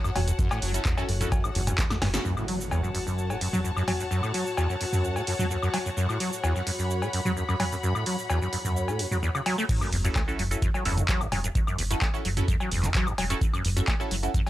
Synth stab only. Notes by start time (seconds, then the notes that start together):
0.74 C#4 E4 F#4 A4
0.97 C#4 E4 F#4 A4
1.21 C#4 E4 F#4 A4
2.14 C#4 E4 F#4 A4
10.04 C#4 E4 F#4 A4
10.28 C#4 E4 F#4 A4
10.51 C#4 E4 F#4 A4
10.86 C#4 E4 F#4 A4
11.90 C#4 E4 F#4 A4
12.14 C#4 E4 F#4 A4
12.37 C#4 E4 F#4 A4
13.30 C#4 E4 F#4 A4
13.76 C#4 E4 F#4 A4
14.00 C#4 E4 F#4 A4
14.23 C#4 E4 F#4 A4